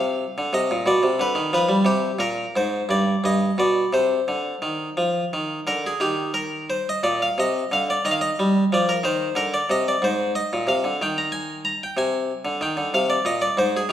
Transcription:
Already playing: C3 F5
0.38 D3
0.53 C3 D#5
0.71 A#2
0.86 B2 D5
1.03 C3
1.20 D3 B4
1.35 D#3
1.53 F3 B4
1.69 G3
1.85 C3 G4
2.19 A#2 A#4
2.56 G#2 C5
2.89 G2 D5
3.24 G2 D#5
3.58 B2 D5
3.93 C3 C5
4.28 D3
4.62 D#3
4.97 F3
5.33 D#3
5.67 D3 A#4
5.86 G#4
6.00 D#3 G4
6.34 A#4
6.70 C5
6.89 D#5
7.03 A#2 D5
7.22 F5
7.38 C3 D#5
7.72 D3 F5
7.90 D5
8.05 D#3 D#5
8.11 F5
8.21 D#5
8.39 G3
8.72 F3 D5
8.89 A#4
9.04 D#3 C5
9.35 D3 A#4
9.54 D5
9.70 C3 D#5
9.88 D5
10.02 G#2 C5
10.35 D#5
10.53 A#2
10.67 C3 F5
10.84 D3
11.02 D#3 G5
11.18 A#5
11.32 G#5
11.65 A#5
11.83 G5
11.97 C3 G#5
12.45 D3
12.61 D#3 G5
12.77 D3
12.94 C3 F5
13.10 D5
13.25 A#2 D#5
13.42 D5
13.57 G#2 C5
13.77 G#4
13.89 D#3

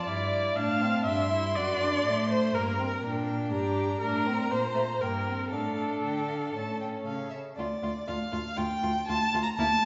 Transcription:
0.06 G2 E4 D5 F5
0.56 A2 D4 F5 A5
0.82 C4
1.05 G2 D4 E5 C6
1.32 E4
1.55 F#2 F#4 D5
1.81 D4
2.05 A2 A3
2.30 C5
2.54 G2 A#3 A#4 A#5
2.79 C4
3.02 A#2 D4 G5
3.51 G2 G4 A#5
4.01 A2 D4 A#4
4.27 C4
4.50 A#2 A#3 C5
4.75 A3
5.00 G2 A#3 A#4 G5
5.26 C4
5.51 A2 D4 A4 F5
6.04 D3 G5
6.28 F5
6.55 A2 C#4 A5
6.81 G5
7.06 C#3 F5
7.30 E5
7.57 D2 A3 F4 D5
7.82 D2 A3 F4
8.07 D2 A3 F4 F5
8.32 D2 A3 F4
8.57 D2 A3 F4 G5
8.83 D2 A3 F4
9.07 D2 A3 F4 A5
9.34 D2 A3 F4
9.43 A#5
9.58 D2 A#3 E4 A5

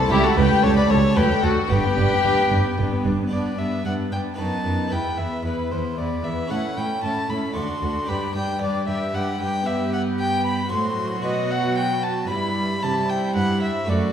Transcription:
Already playing: A3 A5
0.06 A3 E4 A4
0.10 C#2 G3 E4 G4 E5
0.24 A3 F#4 A4 F#5
0.37 C#2 G3 G4 B4 G5
0.51 A3
0.63 C#2 G3 A4 C#5 A5
0.76 A3 B4 D5 B5
0.89 C#2 G3 A4 C#5 A5
1.04 A3
1.12 A3 D4 A4
1.16 D2 F#3 G4 B4 G5
1.31 A3
1.43 D2 F#3 F#4 A4 F#5
1.58 A3
1.66 B3 D4 G4 B4
1.70 G1 G2 D4 G4 G5
1.85 B3
1.98 G1 G2 D4
2.12 B3
2.24 G1 G2 D4
2.39 B3
2.51 G1 G2 D4
2.66 B3
2.78 G1 G2 D4
2.92 B3
3.05 G1 G2 D4
3.19 B3
3.27 B3 D4 G4
3.32 G2 B3 D4 B4 D5
3.58 G2 B3 D4 B4 E5
3.84 G2 B3 D4 B4 F#5
4.12 G2 B3 D4 B4 G5
4.34 B3 D#4 B4
4.38 F#2 B3 D#4 A5
4.65 F#2 B3 D#4 B4
4.87 B3 E4 B4
4.91 E2 B3 E4 G5
5.18 E2 B3 E4 B4 E5
5.44 E2 B3 E4 B4
5.71 E2 B3 E4 B4 C5
5.98 E2 B3 E4 B4 D5
6.24 E2 B3 E4 B4 E5
6.46 C#4 E4 A4
6.50 A2 C#4 E4 F#5
6.77 A2 C#4 E4 A4 G5
7.03 A2 C#4 E4 A4 A5
7.29 A2 C#4 E4 A4 B5
7.52 D2 D4 F#4 A4 C6
7.56 D2 A4
7.82 D2 D4 F#4 A4
8.05 G2 D4 G4 B4 B5
8.10 G2
8.35 G2 D4 G4 B4 G5
8.61 G2 D4 G4 B4 D5
8.87 G2 D4 G4 B4 E5
9.14 G2 D4 G4 B4 F#5
9.40 G2 D4 G4 B4 G5
9.63 G2 B3 G4 B4 E5
9.67 G2 B4
9.93 F#5
10.20 G5
10.46 B5
10.69 A2 F#3 F#4 C5 C6
11.22 B2 F#4 B4 D#5
11.51 F#5
11.77 G5
12.03 A5
12.27 G2 G3 E4 B4 B5
12.80 C3 G3 E4 C5 A5
13.10 G5
13.35 G2 F#5
13.62 E5
13.85 F#2 A3 F#4 C5
13.89 F#2 A3 F#4 C5 D5

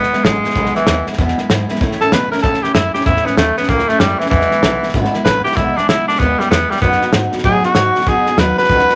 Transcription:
Already playing: G#1 E2 B2 E3 G#3 B3 E4
0.03 snare
0.13 E3 G#3 B3 E4, muted upright bass stroke, snare
0.24 A1 E3 G#3 B3 E4, snare, hi-hat pedal
0.44 E3 G#3 B3 E4, muted upright bass stroke, snare
0.50 snare
0.55 B1 E2 B2 E3 G#3 B3 E4, kick, snare
0.66 snare
0.75 E3 G#3 B3 E4, snare
0.87 D#2 E3 G#3 B3 E4, snare, hi-hat pedal
1.07 E3 G#3 B3 E4, snare
1.13 snare
1.18 E2 B2 E3 G#3 B3 E4, kick, snare
1.28 snare
1.38 E3 G#3 B3 E4, snare
1.49 G#2 E3 G#3 B3 E4, snare, hi-hat pedal
1.69 E3 G#3 B3 E4, snare
1.75 snare
1.81 A2 E3 A3 C#4 E4, kick, snare
1.92 snare
2.01 A3 C#4 E4 A4, muted upright bass stroke, snare
2.12 B2 A3 C#4 E4 B4, snare, hi-hat pedal
2.31 A3 C#4 E4 A#4, muted upright bass stroke, snare
2.38 snare
2.43 A2 C#3 E3 A3 C#4 E4 A4, kick, snare
2.54 snare
2.62 A3 C#4 E4 G4, muted upright bass stroke, snare
2.74 F#2 E3 A3 C#4 E4, snare, hi-hat pedal
2.94 A3 C#4 E4 G4, snare
3.01 snare
3.06 E2 A2 E3 A3 C#4 E4, kick, snare
3.16 snare
3.25 A3 B3 C#4 E4, muted upright bass stroke, snare
3.36 D#2 E3 A3 C#4 E4, snare, hi-hat pedal
3.57 A3 B3 C#4 E4, snare
3.63 snare
3.69 C#2 A2 E3 A3 A#3 C#4 E4, kick, snare
3.79 snare
3.88 A3 C#4 E4, muted upright bass stroke, snare
3.92 A3
3.99 F#2 E3 G3 C#4 E4, snare, hi-hat pedal
4.19 E3 A3 C#4 E4, snare
4.26 E3, snare
4.31 E2 B2 E3 G#3 B3 E4, kick, snare
4.41 snare
4.51 E3 G#3 B3 E4, snare
4.62 B1 E3 G#3 B3 E4, snare, hi-hat pedal
4.82 E3 G#3 B3 E4, muted upright bass stroke, snare
4.89 snare
4.94 G#1 E2 B2 E3 G#3 B3 E4, kick, snare
5.05 snare
5.13 E3 G#3 B3 E4, muted upright bass stroke, snare
5.25 A1 E3 G#3 B3 E4 B4, snare, hi-hat pedal
5.44 E3 G#3 B3 E4 G4, snare
5.52 snare
5.56 B1 E2 B2 E3 G#3 B3 E4, kick, snare
5.76 E3 G#3 B3 D4 E4, muted upright bass stroke, snare
5.88 C#2 E3 G#3 B3 E4, snare, hi-hat pedal
6.07 E3 G#3 B3 D4 E4, muted upright bass stroke, snare
6.15 E2, snare
6.19 D#2 B2 E3 G#3 B3 E4, kick, snare
6.39 E3 G3 G#3 B3 E4, muted upright bass stroke, snare
6.50 E2 E3 G#3 B3 E4, snare, hi-hat pedal
6.70 E3 G3 G#3 B3 E4, snare
6.76 snare
6.82 F#2 B2 F#3 B3 D#4 F#4, kick, snare
6.92 snare
7.01 B3 D#4 F#4, muted upright bass stroke, snare
7.13 G#2 F#3 B3 D#4 F#4, snare, hi-hat pedal
7.32 B3 D#4 F#4, muted upright bass stroke, snare
7.38 snare
7.43 A2 B2 F#3 B3 D#4 F#4 G#4, kick, snare
7.63 B3 D#4 F#4, muted upright bass stroke, snare
7.75 G#2 F#3 B3 D#4 F#4, snare, hi-hat pedal
7.95 B3 D#4 F#4, snare
8.01 snare
8.06 B2 F#3 B3 D#4 F#4 G#4, kick, snare
8.26 B3 D#4 F#4, muted upright bass stroke, snare
8.37 D#2 F#3 B3 D#4 F#4 B4, snare, hi-hat pedal
8.57 B3 D#4 F#4 B4, snare
8.64 snare
8.69 C#2 B2 F#3 B3 D#4 F#4, kick, snare
8.79 snare
8.89 B3 D#4 F#4, muted upright bass stroke, snare

